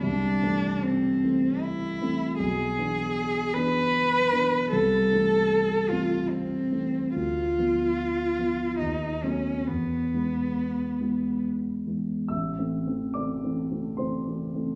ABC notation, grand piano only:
X:1
M:3/4
L:1/8
Q:1/4=74
K:Am
V:1 name="Grand piano"
z6 | z6 | z6 | z6 |
z6 | [ee']2 [dd']2 [cc']2 |]
V:2 name="Grand piano"
C,, [E,A,C]2 [E,A,C]2 [E,A,C] | B,,, [E,B,D]2 [E,B,D]2 [E,B,D] | C,, [E,A,C]2 [E,A,C]2 [E,A,C] | D,, [F,B,]2 [F,B,] ^D,, [^F,A,B,] |
E,, [E,^G,B,]2 [E,G,B,]2 [E,G,B,] | (3A,,, [E,A,C] [E,A,C] (3[E,A,C] [E,A,C] [E,A,C] (3[E,A,C] [E,A,C] [E,A,C] |]